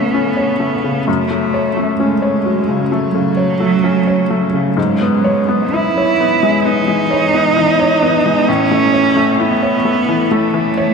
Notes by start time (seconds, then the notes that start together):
Already playing: C#3 A3 B3 C#4 C#5
0.14 C#4
0.37 C#5
0.60 A3
0.84 C#3
1.07 F#2 F#3 A3 C#4 C#5
1.31 A3
1.54 C#5
1.77 A3
2.00 G#3 C#4
2.22 C#5
2.45 F#3
2.68 C#3
2.91 F#3 A3
3.14 C#3
3.37 C#5
3.60 A3
3.84 C#4
4.07 C#5
4.30 A3
4.53 C#3
4.76 G#2 E3 G#3 B3 C#5
5.01 B3
5.24 C#5
5.49 B3
5.73 E4
5.98 C#5
6.20 B3
6.43 G#3
6.64 B3 D#4
6.88 G#3
7.11 C#5
7.34 B3
7.56 E3
7.79 C#5
8.02 B3
8.26 G#3
8.48 A2 A3 C#4 E4 C#5
8.71 A3
8.94 C#5
9.16 A3
9.38 B3 E4
9.63 C#5
9.85 A3
10.09 E3
10.31 A3
10.54 E3
10.78 C#5